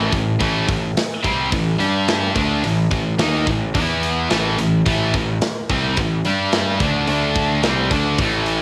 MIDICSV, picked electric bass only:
0, 0, Header, 1, 2, 480
1, 0, Start_track
1, 0, Key_signature, 0, "minor"
1, 0, Tempo, 556586
1, 351, Time_signature, 4, 2, 24, 8
1, 7433, End_track
2, 0, Start_track
2, 0, Title_t, "Picked electric bass"
2, 0, Program_c, 0, 34
2, 0, Note_on_c, 0, 33, 102
2, 91, Note_off_c, 0, 33, 0
2, 107, Note_on_c, 0, 33, 76
2, 332, Note_off_c, 0, 33, 0
2, 351, Note_on_c, 0, 33, 91
2, 575, Note_off_c, 0, 33, 0
2, 589, Note_on_c, 0, 33, 89
2, 814, Note_off_c, 0, 33, 0
2, 1073, Note_on_c, 0, 36, 87
2, 1297, Note_off_c, 0, 36, 0
2, 1314, Note_on_c, 0, 33, 80
2, 1537, Note_off_c, 0, 33, 0
2, 1547, Note_on_c, 0, 43, 77
2, 1997, Note_off_c, 0, 43, 0
2, 2034, Note_on_c, 0, 38, 92
2, 2258, Note_off_c, 0, 38, 0
2, 2270, Note_on_c, 0, 33, 78
2, 2496, Note_off_c, 0, 33, 0
2, 2512, Note_on_c, 0, 33, 83
2, 2737, Note_off_c, 0, 33, 0
2, 2750, Note_on_c, 0, 39, 88
2, 2976, Note_off_c, 0, 39, 0
2, 2994, Note_on_c, 0, 33, 80
2, 3218, Note_off_c, 0, 33, 0
2, 3236, Note_on_c, 0, 40, 92
2, 3682, Note_off_c, 0, 40, 0
2, 3715, Note_on_c, 0, 33, 103
2, 3938, Note_off_c, 0, 33, 0
2, 3950, Note_on_c, 0, 33, 68
2, 4175, Note_off_c, 0, 33, 0
2, 4192, Note_on_c, 0, 33, 100
2, 4416, Note_off_c, 0, 33, 0
2, 4432, Note_on_c, 0, 33, 92
2, 4656, Note_off_c, 0, 33, 0
2, 4912, Note_on_c, 0, 36, 98
2, 5136, Note_off_c, 0, 36, 0
2, 5152, Note_on_c, 0, 33, 84
2, 5376, Note_off_c, 0, 33, 0
2, 5390, Note_on_c, 0, 43, 84
2, 5837, Note_off_c, 0, 43, 0
2, 5866, Note_on_c, 0, 38, 89
2, 6092, Note_off_c, 0, 38, 0
2, 6103, Note_on_c, 0, 38, 91
2, 6552, Note_off_c, 0, 38, 0
2, 6578, Note_on_c, 0, 36, 100
2, 6806, Note_off_c, 0, 36, 0
2, 6820, Note_on_c, 0, 38, 91
2, 7047, Note_off_c, 0, 38, 0
2, 7060, Note_on_c, 0, 33, 93
2, 7433, Note_off_c, 0, 33, 0
2, 7433, End_track
0, 0, End_of_file